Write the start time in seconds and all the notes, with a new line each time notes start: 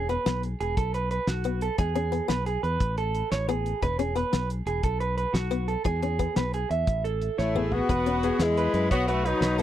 Already playing: E1
0.09 B3 B4, closed hi-hat
0.26 B1 B3, snare, closed hi-hat
0.43 closed hi-hat
0.60 E1 G#4, closed hi-hat
0.77 B1 A4, kick, closed hi-hat
0.94 B4, closed hi-hat
1.11 B4, closed hi-hat
1.27 B1 F#4, snare, closed hi-hat
1.44 B3, closed hi-hat
1.61 A4, closed hi-hat
1.78 E2 G#3 G#4, kick, closed hi-hat
1.95 C#4 G#4, closed hi-hat
2.12 B3, closed hi-hat
2.28 B1 B3 B4, snare, closed hi-hat
2.46 G#4, closed hi-hat
2.63 E2 B4, closed hi-hat
2.80 A1, kick, closed hi-hat
2.98 A4, closed hi-hat
3.15 closed hi-hat
3.32 A1 C#5, snare, closed hi-hat
3.49 B3 G#4, closed hi-hat
3.66 closed hi-hat
3.82 E1 G#3 B4, kick, closed hi-hat
3.99 C#4 G#4, closed hi-hat
4.15 B3 B4, closed hi-hat
4.33 B1 B3, snare, closed hi-hat
4.50 closed hi-hat
4.66 E1 G#4, closed hi-hat
4.83 B1 A4, kick, closed hi-hat
5.00 B4, closed hi-hat
5.17 B4, closed hi-hat
5.34 B1 F#4, snare, closed hi-hat
5.51 B3, closed hi-hat
5.68 A4, closed hi-hat
5.84 E2 G#3 G#4, kick, closed hi-hat
6.02 C#4 G#4, closed hi-hat
6.19 B3, kick, closed hi-hat
6.36 B1 B3 B4, snare, closed hi-hat
6.54 G#4, closed hi-hat
6.70 E2 E5, closed hi-hat
6.87 A1, kick, closed hi-hat
7.04 A4, closed hi-hat
7.22 closed hi-hat
7.38 A1 A3 E4 C#5, snare
7.55 B3 G#4, mid tom
7.72 B3 F#4, floor tom
7.89 E1 G#3 B4, kick, closed hi-hat
8.06 C#4, closed hi-hat
8.23 B3 G#4, closed hi-hat
8.39 E2 G#3 B3 E4, snare, closed hi-hat
8.57 B4, closed hi-hat
8.74 F#2 B4, closed hi-hat
8.91 B1 B3 F#4 C#5, kick, closed hi-hat
9.07 A3 F#4 B4, closed hi-hat
9.25 F#3 D#4 B4, closed hi-hat
9.41 B1 B4, snare, closed hi-hat
9.58 G#3 B3 E4 A4, closed hi-hat